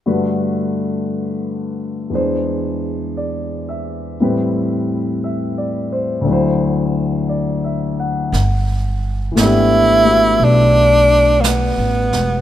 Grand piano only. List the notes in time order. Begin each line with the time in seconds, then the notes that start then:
0.06 G2 D3 A3 F#4 B4
2.10 E2 E3 G#3
2.14 D4 C5
3.17 D5
3.69 E5
4.20 A2 E3 G3 C4 B4
5.24 E5
5.58 D5
5.92 C5
6.21 D2 D3
6.27 F#3 E4
6.32 C5
7.29 D5
7.64 E5
8.00 F#5
9.32 E3 A3
9.37 B3 D4
9.43 G4
10.04 A3 B3 F#4